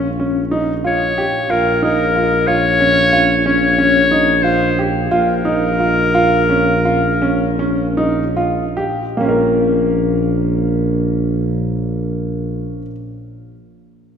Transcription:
Already playing: tuba A#1
0.20 grand piano C#4
0.51 grand piano D#4
0.84 grand piano F4, clarinet C#5
1.18 grand piano G4
1.49 tuba A#1, grand piano F4, clarinet A#4
1.83 grand piano D#4, clarinet A#4
2.16 grand piano F4
2.47 grand piano F4, clarinet C#5
2.80 grand piano C#4
3.13 grand piano F4
3.46 grand piano C#4, clarinet C#5
3.78 grand piano C#4
4.11 grand piano D#4
4.43 grand piano F4, clarinet C5
4.79 grand piano G4
5.11 tuba A#1, grand piano F4, clarinet A#4
5.45 grand piano D#4
5.80 grand piano F4
6.15 grand piano F4
6.49 grand piano C#4
6.85 grand piano F4
7.22 grand piano C#4
7.59 grand piano C#4
7.97 grand piano D#4
8.37 grand piano F4
8.77 grand piano G4
9.17 tuba A#1, grand piano A#3 C#4
9.25 grand piano F4 A#4

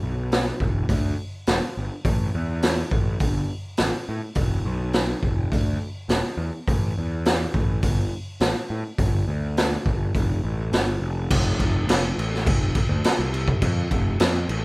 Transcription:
0.03 picked electric bass B1
0.32 snare, open hi-hat
0.60 picked electric bass E1, kick
0.89 picked electric bass D2, kick, open hi-hat
1.47 picked electric bass E1, snare, open hi-hat
1.77 picked electric bass G1
2.05 picked electric bass A1, kick, open hi-hat
2.35 picked electric bass E2
2.62 snare, open hi-hat
2.91 picked electric bass A1, kick
3.20 picked electric bass G1, kick, open hi-hat
3.77 picked electric bass A1, snare, open hi-hat
4.09 picked electric bass A2
4.35 picked electric bass E1, kick, open hi-hat
4.65 picked electric bass B1
4.93 snare, open hi-hat
5.23 picked electric bass E1, kick
5.52 picked electric bass D2, kick, open hi-hat
6.09 picked electric bass E1, snare, open hi-hat
6.37 picked electric bass E2
6.68 picked electric bass A1, kick, open hi-hat
6.98 picked electric bass E2
7.25 snare, open hi-hat
7.54 picked electric bass A1, kick
7.83 picked electric bass G1, kick, open hi-hat
8.40 picked electric bass A1, snare, open hi-hat
8.70 picked electric bass A2
8.98 picked electric bass G1, kick, open hi-hat
9.28 picked electric bass D2
9.57 snare, open hi-hat
9.86 picked electric bass G1, kick
10.15 picked electric bass F1, kick, open hi-hat
10.43 picked electric bass A1
10.72 picked electric bass G1, snare, open hi-hat
11.00 picked electric bass F1
11.31 picked electric bass F1, kick, crash
11.59 picked electric bass F1, kick, crash
11.87 picked electric bass F1, snare, crash
12.18 picked electric bass A1, crash
12.34 snare
12.46 picked electric bass F1, kick, crash
12.75 kick, crash
12.89 picked electric bass D2
13.04 snare, crash
13.19 picked electric bass C2
13.34 crash
13.48 kick
13.62 picked electric bass F2, kick, crash
13.91 picked electric bass F1, kick, crash
14.20 picked electric bass F2, snare, crash
14.49 picked electric bass A1, crash

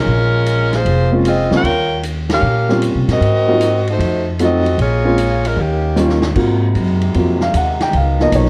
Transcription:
Already playing: saxophone section G#3 C#4 F4 A#4
0.06 upright bass A#1
0.46 hi-hat pedal, ride
0.73 saxophone section A#3 F4 G#4 C5, snare, ride
0.85 upright bass F1, ride
1.11 grand piano G#3 A#3 C4 C#4 F4
1.25 saxophone section C4 F4 G#4 D#5, hi-hat pedal, ride
1.50 upright bass C#2, grand piano G3 A#3 C4 C#4 F4, saxophone section C#5, snare
1.55 saxophone section F4 A#4 G5
1.63 upright bass D#2, ride
2.03 hi-hat pedal, ride
2.29 saxophone section C#4 G4 A#4 F5, snare, ride
2.42 upright bass A#2
2.69 grand piano G3 A#3 C4 C#4 F4, snare
2.82 hi-hat pedal, ride
2.95 upright bass C3
3.08 upright bass A#2, saxophone section C4 F#4 A#4 D#5, snare, ride
3.21 upright bass G#2, ride
3.48 grand piano F#3 A#3 C4 D#4 F4
3.61 hi-hat pedal, ride
3.88 saxophone section A3 D#4 F#4 C5, ride
3.99 upright bass F2, ride
4.39 grand piano F#3 A3 C4 D#4 F4, saxophone section C4 F#4 A4 D#5, hi-hat pedal, ride
4.66 ride
4.78 upright bass A#1, saxophone section A#3 F4 G#4 C#5, ride
5.05 grand piano G#3 A#3 C4 C#4 F4
5.18 hi-hat pedal, ride
5.45 saxophone section G#3 C#4 F4 A#4, ride
5.57 upright bass D#2, saxophone section D#3 A#3 C#4 G4
5.96 grand piano G3 A#3 C#4 D#4 F4, snare, hi-hat pedal
6.09 snare
6.22 snare
6.35 upright bass G#2, trombone section C3 G#3 D#4 A#4, grand piano A#3 C4 F4 F#4, kick, crash
6.75 upright bass F#2, hi-hat pedal, ride
7.02 ride
7.14 upright bass F2, grand piano F#3 A#3 C4 F4, ride
7.41 grand piano F5, snare
7.54 upright bass D#2, grand piano F#5, hi-hat pedal, ride
7.80 grand piano G5, snare, ride
7.93 upright bass C#2, trombone section B2 D#3, grand piano F5, ride
8.20 grand piano F3 A#3 B3 D#4 D#5, snare
8.32 upright bass B1, grand piano C#5, hi-hat pedal, ride
8.45 snare

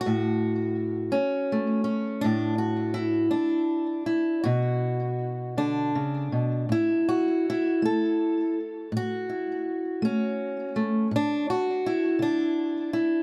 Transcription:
0.01 steel-string acoustic guitar F#4
0.06 steel-string acoustic guitar A2
1.12 steel-string acoustic guitar C#4, muted steel-string acoustic guitar stroke
1.52 steel-string acoustic guitar A3
1.84 steel-string acoustic guitar C#4
2.21 steel-string acoustic guitar A2 D4
2.58 steel-string acoustic guitar F#4
2.94 steel-string acoustic guitar E4
3.31 steel-string acoustic guitar D4, muted steel-string acoustic guitar stroke
4.06 steel-string acoustic guitar E4
4.44 steel-string acoustic guitar B2 F#4
5.57 steel-string acoustic guitar D3 D4
5.95 steel-string acoustic guitar C#3
6.32 steel-string acoustic guitar B2
6.69 steel-string acoustic guitar A2 E4
7.09 steel-string acoustic guitar F#4
7.50 steel-string acoustic guitar E4
7.82 steel-string acoustic guitar A3 A4
8.92 steel-string acoustic guitar A2
8.97 steel-string acoustic guitar F#4
9.29 steel-string acoustic guitar E4
10.02 steel-string acoustic guitar A3 C#4
10.76 steel-string acoustic guitar A3
11.11 steel-string acoustic guitar A2
11.16 steel-string acoustic guitar D4
11.50 steel-string acoustic guitar F#4
11.86 steel-string acoustic guitar E4
12.19 steel-string acoustic guitar D3 D4
12.93 steel-string acoustic guitar E4

